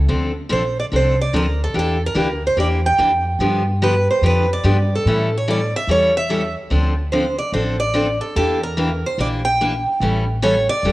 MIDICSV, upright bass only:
0, 0, Header, 1, 2, 480
1, 0, Start_track
1, 0, Key_signature, -1, "minor"
1, 0, Tempo, 413223
1, 109, Time_signature, 4, 2, 24, 8
1, 12687, End_track
2, 0, Start_track
2, 0, Title_t, "Upright bass"
2, 0, Program_c, 0, 32
2, 97, Note_on_c, 0, 38, 77
2, 486, Note_off_c, 0, 38, 0
2, 583, Note_on_c, 0, 34, 75
2, 994, Note_off_c, 0, 34, 0
2, 1066, Note_on_c, 0, 36, 67
2, 1476, Note_off_c, 0, 36, 0
2, 1551, Note_on_c, 0, 38, 83
2, 1959, Note_off_c, 0, 38, 0
2, 2025, Note_on_c, 0, 40, 83
2, 2412, Note_off_c, 0, 40, 0
2, 2500, Note_on_c, 0, 38, 78
2, 2914, Note_off_c, 0, 38, 0
2, 2983, Note_on_c, 0, 40, 76
2, 3395, Note_off_c, 0, 40, 0
2, 3470, Note_on_c, 0, 41, 87
2, 3880, Note_off_c, 0, 41, 0
2, 3938, Note_on_c, 0, 43, 86
2, 4713, Note_off_c, 0, 43, 0
2, 4895, Note_on_c, 0, 41, 75
2, 5312, Note_off_c, 0, 41, 0
2, 5387, Note_on_c, 0, 43, 76
2, 5798, Note_off_c, 0, 43, 0
2, 5870, Note_on_c, 0, 45, 79
2, 6641, Note_off_c, 0, 45, 0
2, 6822, Note_on_c, 0, 40, 68
2, 7595, Note_off_c, 0, 40, 0
2, 7792, Note_on_c, 0, 38, 75
2, 8561, Note_off_c, 0, 38, 0
2, 8738, Note_on_c, 0, 33, 78
2, 9512, Note_off_c, 0, 33, 0
2, 9707, Note_on_c, 0, 40, 84
2, 10476, Note_off_c, 0, 40, 0
2, 10659, Note_on_c, 0, 34, 66
2, 11431, Note_off_c, 0, 34, 0
2, 11619, Note_on_c, 0, 33, 86
2, 12389, Note_off_c, 0, 33, 0
2, 12577, Note_on_c, 0, 28, 77
2, 12687, Note_off_c, 0, 28, 0
2, 12687, End_track
0, 0, End_of_file